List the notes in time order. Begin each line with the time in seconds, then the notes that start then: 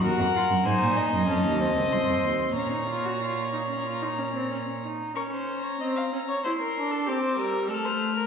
0.03 D#2 F#4 A#4 F#5
0.19 F2
0.36 F4
0.50 F#2
0.65 G#2 D#4 C5 G#5
0.82 A#2
0.97 D#5
1.13 F#2
1.28 F2 C#4 A5
1.44 D#2
1.60 C4
1.75 C#2
1.91 C2 C6
2.07 F2
2.23 D#2
2.55 A#2 C#4 C#5 A#5
2.72 D#4
2.89 F4
3.05 F#4
3.22 F4
3.54 D#4
3.69 C#4
3.86 F4
4.02 D#4
4.19 C#4
4.36 C4
4.51 C#4
4.84 D#4
5.16 C#4 A#4 C#6
5.32 C5
5.49 A#5
5.64 C#5
5.81 C4 D#5
5.96 F5
6.12 C#4
6.28 C#5
6.44 E4 C5 C6
6.60 A#4
6.77 D4
6.92 A4
7.07 C4 G4 D6
7.23 C5
7.38 G3 A#4 E6
7.70 A3 A4 F6
7.85 C5
8.17 A#4